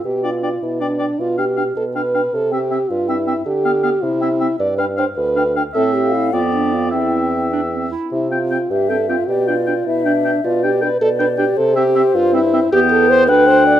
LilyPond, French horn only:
\new Staff \with { instrumentName = "French horn" } { \time 6/8 \key c \major \tempo 4. = 105 g'8 f'4 e'8 d'4 | f'8 g'4 a'8 b'4 | a'8 g'4 f'8 e'4 | g'4. e'4. |
d''8 b'8 c''8 b'4 r8 | a'8 g'8 e'8 f'8 d'8 f'8 | e'4. r4. | e'8 f'4 g'8 a'8 f'8 |
g'8 f'4 e'8 d'4 | f'8 g'8 b'8 a'8 b'8 g'8 | a'8 g'4 f'8 e'4 | \key e \minor g'8 a'8 c''8 b'8 c''8 d''8 | }